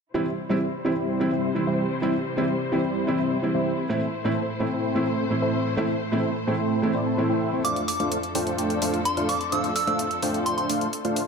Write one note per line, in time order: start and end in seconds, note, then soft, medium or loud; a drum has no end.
0.14 3.86 C3 medium
0.14 0.24 E3 medium
0.14 0.24 G3 medium
0.14 0.32 G3 medium
0.14 3.86 G3 medium
0.14 0.32 C4 medium
0.14 0.24 C4 medium
0.14 0.32 E4 medium
0.14 7.61 E4 medium
0.14 0.25 E4 medium
0.14 0.32 C5 medium
0.14 3.86 C5 medium
0.14 0.32 E5 loud
0.49 0.56 E3 medium
0.49 0.56 G3 medium
0.49 0.68 G3 medium
0.49 0.68 C4 medium
0.49 0.56 C4 medium
0.49 0.68 E4 medium
0.49 0.56 E4 medium
0.49 0.68 C5 medium
0.49 0.68 E5 medium
0.84 0.91 E3 medium
0.84 0.91 G3 medium
0.84 1.29 G3 medium
0.84 1.29 C4 medium
0.84 0.91 C4 medium
0.84 1.29 E4 medium
0.84 0.91 E4 medium
0.84 1.29 C5 medium
0.84 1.29 G5 medium
1.20 1.30 E3 medium
1.20 1.30 G3 medium
1.20 1.30 C4 medium
1.20 1.30 E4 medium
1.32 1.50 G3 medium
1.32 1.50 C4 medium
1.32 1.50 E4 medium
1.32 1.50 C5 medium
1.32 1.50 E5 loud
1.55 1.99 E3 medium
1.55 1.99 G3 medium
1.55 2.00 C4 medium
1.55 2.00 E4 medium
1.67 1.85 G3 medium
1.67 1.85 C4 medium
1.67 1.85 E4 medium
1.67 1.85 C5 medium
1.67 1.85 E5 medium
2.02 2.12 E3 medium
2.02 2.12 G3 medium
2.02 2.20 G3 medium
2.02 2.20 C4 medium
2.02 2.12 C4 medium
2.02 2.20 E4 medium
2.02 2.12 E4 medium
2.02 2.20 C5 medium
2.02 2.20 E5 loud
2.37 2.43 E3 medium
2.37 2.43 G3 medium
2.37 2.55 G3 medium
2.37 2.55 C4 medium
2.37 2.44 C4 medium
2.37 2.55 E4 medium
2.37 2.44 E4 medium
2.37 2.55 C5 medium
2.37 2.55 E5 medium
2.72 2.78 E3 medium
2.72 2.78 G3 medium
2.72 3.17 G3 medium
2.72 2.79 C4 medium
2.72 3.17 C4 medium
2.72 3.17 E4 medium
2.72 2.79 E4 medium
2.72 3.17 C5 medium
2.72 3.17 G5 medium
3.07 3.17 E3 medium
3.07 3.17 G3 medium
3.07 3.17 C4 medium
3.07 3.18 E4 medium
3.19 3.37 G3 medium
3.19 3.37 C4 medium
3.19 3.37 E4 medium
3.19 3.37 C5 medium
3.19 3.37 E5 loud
3.42 3.87 E3 medium
3.42 3.87 G3 medium
3.42 3.87 C4 medium
3.42 3.87 E4 medium
3.55 3.72 G3 medium
3.55 3.72 C4 medium
3.55 3.72 E4 medium
3.55 3.72 C5 medium
3.55 3.72 E5 medium
3.89 3.99 A2 medium
3.89 7.61 A2 medium
3.89 3.99 E3 medium
3.89 3.99 A3 medium
3.89 4.07 A3 medium
3.89 7.61 A3 medium
3.89 4.08 C4 medium
3.89 4.00 C4 medium
3.89 4.08 E4 medium
3.89 4.00 E4 loud
3.89 7.61 C5 medium
3.89 4.08 C5 medium
3.89 4.08 E5 medium
4.24 4.31 A2 medium
4.24 4.31 E3 medium
4.24 4.31 A3 medium
4.24 4.43 A3 medium
4.24 4.43 C4 medium
4.24 4.31 C4 medium
4.24 4.43 E4 medium
4.24 4.31 E4 medium
4.24 4.43 C5 medium
4.24 4.43 E5 medium
4.59 4.66 A2 medium
4.59 4.66 E3 medium
4.59 4.66 A3 medium
4.59 5.04 A3 medium
4.59 5.04 C4 medium
4.59 4.66 C4 medium
4.59 5.04 E4 medium
4.59 4.66 E4 medium
4.59 5.04 C5 medium
4.59 5.04 G5 medium
4.95 5.05 A2 medium
4.95 5.05 E3 medium
4.95 5.05 A3 medium
4.95 5.05 C4 medium
4.95 5.05 E4 medium
5.07 5.25 A3 medium
5.07 5.25 C4 medium
5.07 5.25 E4 medium
5.07 5.25 C5 medium
5.07 5.25 E5 loud
5.30 5.74 A2 medium
5.30 5.74 E3 medium
5.30 5.74 A3 medium
5.30 5.75 C4 medium
5.30 5.75 E4 medium
5.42 5.60 A3 medium
5.42 5.60 C4 medium
5.42 5.60 E4 medium
5.42 5.60 C5 medium
5.42 5.60 E5 medium
5.77 5.87 A2 medium
5.77 5.87 E3 medium
5.77 5.87 A3 medium
5.77 5.95 A3 medium
5.77 5.95 C4 medium
5.77 5.87 C4 medium
5.77 5.95 E4 medium
5.77 5.87 E4 loud
5.77 5.95 C5 medium
5.77 5.95 E5 loud
6.12 6.18 A2 medium
6.12 6.18 E3 medium
6.12 6.18 A3 medium
6.12 6.30 A3 medium
6.12 6.30 C4 medium
6.12 6.19 C4 medium
6.12 6.30 E4 medium
6.12 6.19 E4 medium
6.12 6.30 C5 medium
6.12 6.30 E5 medium
6.47 6.53 A2 medium
6.47 6.53 E3 medium
6.47 6.92 A3 medium
6.47 6.54 A3 medium
6.47 6.92 C4 medium
6.47 6.54 C4 medium
6.47 6.92 E4 medium
6.47 6.54 E4 medium
6.47 6.92 C5 medium
6.47 6.92 G5 medium
6.82 6.92 A2 medium
6.82 6.92 E3 medium
6.82 6.92 A3 medium
6.82 6.93 C4 medium
6.82 6.93 E4 medium
6.94 7.04 A3 medium
6.94 7.04 C4 medium
6.94 7.04 E4 medium
6.94 7.04 C5 medium
6.94 7.04 D5 loud
7.06 7.24 A3 medium
7.06 7.24 C4 medium
7.06 7.24 E4 medium
7.06 7.24 C5 medium
7.06 7.24 A5 medium
7.17 7.62 A2 medium
7.17 7.62 E3 medium
7.17 7.62 A3 medium
7.17 7.62 C4 medium
7.17 7.62 E4 medium
7.30 7.50 A3 medium
7.30 7.50 C4 medium
7.30 7.50 E4 medium
7.30 7.50 C5 medium
7.30 7.50 G5 loud
7.53 7.62 A3 medium
7.53 7.62 C4 medium
7.53 7.62 E4 medium
7.53 7.62 C5 medium
7.53 7.62 G5 loud
7.64 11.27 F2 medium
7.64 11.27 F3 medium
7.64 7.82 A3 medium
7.64 7.82 D4 medium
7.64 11.27 D4 medium
7.64 7.82 F4 medium
7.64 11.27 A4 medium
7.64 7.82 C5 medium
7.64 7.82 F5 loud
7.64 7.79 D6 medium
7.64 closed hi-hat medium
7.76 closed hi-hat soft
7.88 8.02 D6 medium
7.88 open hi-hat loud
8.00 8.18 A3 medium
8.00 8.18 D4 medium
8.00 8.18 F4 medium
8.00 8.18 C5 medium
8.00 8.18 F5 medium
8.00 closed hi-hat soft
8.12 closed hi-hat medium
8.23 closed hi-hat soft
8.35 8.79 A3 medium
8.35 8.79 D4 medium
8.35 8.79 F4 medium
8.35 8.79 C5 medium
8.35 8.79 G5 medium
8.35 open hi-hat medium
8.47 closed hi-hat soft
8.58 closed hi-hat medium
8.70 closed hi-hat soft
8.82 9.00 A3 medium
8.82 9.00 D4 medium
8.82 9.00 F4 medium
8.82 9.00 C5 medium
8.82 9.00 F5 medium
8.82 open hi-hat medium
8.94 closed hi-hat soft
9.05 9.20 C6 medium
9.05 closed hi-hat medium
9.17 9.35 A3 medium
9.17 9.35 D4 medium
9.17 9.35 F4 medium
9.17 9.35 C5 medium
9.17 9.35 F5 medium
9.17 closed hi-hat soft
9.29 9.43 D6 medium
9.29 open hi-hat medium
9.41 closed hi-hat soft
9.52 9.70 A3 medium
9.52 9.70 D4 medium
9.52 9.70 F4 medium
9.52 9.70 C5 medium
9.52 9.70 F5 loud
9.52 9.66 E6 medium
9.52 closed hi-hat medium
9.64 closed hi-hat soft
9.76 9.83 E6 medium
9.76 open hi-hat medium
9.87 10.05 A3 medium
9.87 10.05 D4 medium
9.87 10.05 F4 medium
9.87 10.05 C5 medium
9.87 10.05 F5 medium
9.87 9.95 E6 medium
9.87 closed hi-hat soft
9.99 closed hi-hat medium
10.11 closed hi-hat soft
10.22 10.67 A3 medium
10.22 10.67 D4 medium
10.22 10.67 F4 medium
10.22 10.67 C5 medium
10.22 10.67 G5 medium
10.22 open hi-hat medium
10.34 closed hi-hat soft
10.46 10.53 C6 medium
10.46 closed hi-hat medium
10.58 10.65 C6 medium
10.58 closed hi-hat soft
10.69 10.87 A3 medium
10.69 10.87 D4 medium
10.69 10.87 F4 medium
10.69 10.87 C5 medium
10.69 10.87 F5 loud
10.69 open hi-hat medium
10.81 closed hi-hat soft
10.93 closed hi-hat medium
11.05 11.22 A3 medium
11.05 11.22 D4 medium
11.05 11.22 F4 medium
11.05 11.22 C5 medium
11.05 11.22 F5 medium
11.05 closed hi-hat soft
11.16 open hi-hat medium